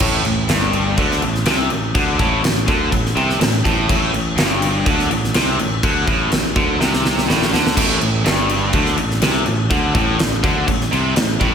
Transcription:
0.00 0.23 A1 loud
0.00 0.24 A2 medium
0.00 kick loud
0.00 crash loud
0.00 crash medium
0.25 0.48 A1 medium
0.25 0.44 A2 medium
0.25 crash medium
0.49 0.95 G1 loud
0.49 0.97 G2 loud
0.49 snare loud
0.49 crash medium
0.73 crash medium
0.97 1.21 D2 medium
0.97 1.22 D3 loud
0.97 kick loud
0.97 crash medium
1.11 snare soft
1.22 1.45 A1 medium
1.22 1.42 A2 medium
1.22 crash medium
1.35 snare soft
1.45 1.69 C2 loud
1.45 1.70 C3 loud
1.45 snare loud
1.45 crash medium
1.70 1.94 A1 medium
1.70 1.90 A2 medium
1.70 crash medium
1.95 2.18 D2 loud
1.95 2.18 D3 loud
1.95 kick loud
1.95 crash medium
2.19 2.42 A1 medium
2.19 2.42 A2 loud
2.19 kick loud
2.19 crash medium
2.43 2.66 A1 medium
2.43 2.63 A2 medium
2.43 snare loud
2.43 crash medium
2.67 2.91 D2 medium
2.67 2.91 D3 medium
2.67 kick loud
2.67 crash medium
2.91 3.15 A1 medium
2.91 3.11 A2 medium
2.91 kick medium
2.91 crash medium
3.06 snare soft
3.16 3.38 C2 loud
3.16 3.39 C3 loud
3.16 crash medium
3.30 snare soft
3.39 3.62 A1 medium
3.39 3.60 A2 medium
3.39 snare loud
3.39 crash medium
3.65 3.88 A1 medium
3.65 3.87 A2 loud
3.65 kick loud
3.65 crash medium
3.88 4.12 A1 medium
3.88 4.12 A2 loud
3.88 kick loud
3.88 crash medium
4.12 4.35 A1 medium
4.12 4.33 A2 medium
4.12 crash medium
4.36 4.82 G1 loud
4.36 4.85 G2 loud
4.36 snare loud
4.36 crash medium
4.62 crash medium
4.86 5.09 D2 medium
4.86 5.10 D3 loud
4.86 kick loud
4.86 crash medium
4.99 snare soft
5.11 5.33 A1 medium
5.11 5.30 A2 medium
5.11 crash medium
5.24 snare soft
5.34 5.57 C2 loud
5.34 5.58 C3 loud
5.34 snare loud
5.34 crash medium
5.59 5.82 A1 medium
5.59 5.79 A2 medium
5.59 crash medium
5.83 6.06 D2 medium
5.83 6.07 D3 medium
5.83 kick loud
5.83 crash medium
6.07 6.30 A1 medium
6.07 6.31 A2 medium
6.07 kick loud
6.07 crash medium
6.32 6.54 A1 medium
6.32 6.51 A2 medium
6.32 snare loud
6.32 crash medium
6.56 6.78 D2 medium
6.56 6.80 D3 loud
6.56 kick loud
6.56 crash medium
6.81 7.26 C2 medium
6.81 7.28 C3 loud
6.81 snare medium
6.93 snare medium
7.05 snare medium
7.18 snare medium
7.29 7.52 A1 medium
7.29 7.52 A2 loud
7.29 snare medium
7.42 snare medium
7.54 7.76 D2 medium
7.54 7.77 D3 loud
7.54 snare medium
7.67 snare loud
7.77 7.99 A1 medium
7.77 8.00 A2 medium
7.77 kick loud
7.77 crash loud
7.77 crash medium
8.01 8.24 A1 medium
8.01 8.21 A2 medium
8.01 crash medium
8.24 8.70 G1 loud
8.24 8.73 G2 loud
8.24 snare medium
8.24 crash medium
8.49 crash medium
8.73 8.96 D2 medium
8.73 8.98 D3 loud
8.73 kick loud
8.73 crash medium
8.86 snare soft
8.97 9.21 A1 medium
8.97 9.18 A2 medium
8.97 crash medium
9.11 snare soft
9.22 9.45 C2 loud
9.22 9.46 C3 medium
9.22 snare loud
9.22 crash medium
9.46 9.69 A1 medium
9.46 9.66 A2 medium
9.46 crash medium
9.70 9.93 D2 medium
9.70 9.94 D3 medium
9.70 kick loud
9.70 crash medium
9.94 10.17 A1 medium
9.94 10.18 A2 loud
9.94 kick loud
9.94 crash medium
10.19 10.42 A1 medium
10.19 10.39 A2 medium
10.19 snare loud
10.19 crash medium
10.43 10.66 D2 loud
10.43 10.67 D3 loud
10.43 kick loud
10.43 crash medium
10.68 10.90 A1 medium
10.68 10.87 A2 medium
10.68 kick medium
10.68 crash medium
10.81 snare soft
10.92 11.15 C2 loud
10.92 11.16 C3 loud
10.92 crash medium
11.16 11.39 A1 medium
11.16 11.36 A2 medium
11.16 snare loud
11.16 crash medium
11.40 11.54 A1 medium
11.40 11.54 A2 loud
11.40 kick loud
11.40 crash medium

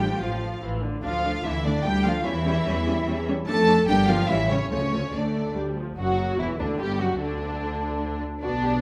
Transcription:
0.00 0.16 A1 medium
0.00 0.10 F3 soft
0.00 0.20 G3 medium
0.00 0.10 D4 soft
0.00 0.20 G4 medium
0.00 0.19 G5 medium
0.10 0.21 A3 soft
0.10 0.21 F4 soft
0.20 0.58 A1 soft
0.20 0.59 F3 medium
0.20 0.62 F3 soft
0.20 0.62 F4 soft
0.20 0.62 F5 medium
0.61 0.99 A1 soft
0.61 0.82 E3 soft
0.82 1.03 D3 soft
1.03 1.41 D2 medium
1.03 1.42 F3 medium
1.03 1.11 A3 soft
1.03 1.11 D4 soft
1.03 1.42 F4 medium
1.03 1.42 F5 medium
1.24 1.33 A3 soft
1.24 1.32 D4 soft
1.44 1.81 D2 medium
1.44 1.65 E3 medium
1.44 1.52 A3 soft
1.44 1.52 D4 soft
1.44 1.66 E4 medium
1.44 1.65 E5 medium
1.65 1.85 D3 medium
1.65 1.73 A3 soft
1.65 1.73 D4 soft
1.65 1.85 D4 medium
1.65 1.86 D5 medium
1.84 2.21 D2 medium
1.84 2.05 G3 medium
1.84 1.92 A3 soft
1.84 1.92 D4 soft
1.84 2.05 G4 medium
1.84 2.06 G5 medium
2.04 2.26 F3 medium
2.04 2.12 A3 soft
2.04 2.12 D4 soft
2.04 2.26 F4 medium
2.04 2.26 F5 medium
2.24 2.62 E2 medium
2.24 3.25 E3 medium
2.24 2.33 G3 medium
2.24 2.32 C#4 medium
2.24 3.27 E4 medium
2.24 3.27 E5 medium
2.46 2.54 G3 soft
2.46 2.54 C#4 soft
2.66 3.02 E2 medium
2.66 2.74 G3 medium
2.66 2.74 C#4 soft
2.86 2.94 G3 medium
2.86 2.95 C#4 medium
3.06 3.42 E2 medium
3.06 3.16 G3 medium
3.06 3.16 C#4 medium
3.28 3.36 G3 medium
3.28 3.36 C#4 medium
3.47 3.83 F2 medium
3.47 3.55 A3 medium
3.47 3.85 A3 medium
3.47 3.55 D4 medium
3.47 3.85 A4 medium
3.47 3.85 A5 medium
3.67 3.75 A3 medium
3.67 3.75 D4 medium
3.87 4.25 G1 medium
3.87 4.08 G3 medium
3.87 3.95 A#3 medium
3.87 3.96 D4 medium
3.87 4.08 G4 medium
3.87 4.08 G5 medium
4.08 4.30 F3 medium
4.08 4.17 A#3 medium
4.08 4.17 D4 medium
4.08 4.29 F4 medium
4.08 4.29 F5 medium
4.28 4.66 A1 medium
4.28 4.50 E3 medium
4.28 4.37 G3 soft
4.28 4.38 C#4 soft
4.28 4.51 E4 medium
4.28 4.50 E5 medium
4.50 4.58 C#3 medium
4.50 4.58 G3 soft
4.50 4.58 C#4 soft
4.50 4.72 C#4 medium
4.50 4.69 C#5 medium
4.71 5.09 D2 medium
4.71 5.13 C#3 medium
4.71 4.79 F3 soft
4.71 4.79 A3 soft
4.71 5.13 C#4 medium
4.71 5.12 C#5 medium
4.92 5.00 F3 soft
4.92 5.00 A3 soft
5.13 5.51 D2 soft
5.13 5.55 D3 soft
5.13 5.53 A3 soft
5.13 5.56 D4 soft
5.13 5.56 D5 medium
5.55 5.93 D2 soft
5.55 5.76 G3 soft
5.76 5.97 F3 soft
5.97 6.36 F#1 medium
5.97 6.36 F#2 medium
5.97 6.36 F#3 medium
5.97 6.36 F#4 medium
6.38 6.47 E1 medium
6.38 6.46 E2 medium
6.38 6.59 E3 medium
6.38 6.47 E4 medium
6.38 6.60 E4 medium
6.59 6.67 D2 medium
6.59 6.79 D3 medium
6.59 6.67 D4 medium
6.59 6.80 D4 medium
6.79 7.00 G1 medium
6.79 6.99 G2 medium
6.79 7.00 G3 medium
6.79 7.00 G4 medium
6.99 7.20 F#1 medium
6.99 7.20 F#2 medium
6.99 7.20 F#3 medium
6.99 7.20 F#4 medium
7.20 8.20 D2 medium
7.20 8.21 D2 medium
7.20 8.20 D3 medium
7.20 8.20 D4 medium
8.42 8.81 B1 medium
8.42 8.81 B2 medium
8.42 8.80 B3 soft
8.42 8.80 D4 medium
8.42 8.51 F#4 soft
8.42 8.80 D5 soft
8.62 8.70 G4 soft

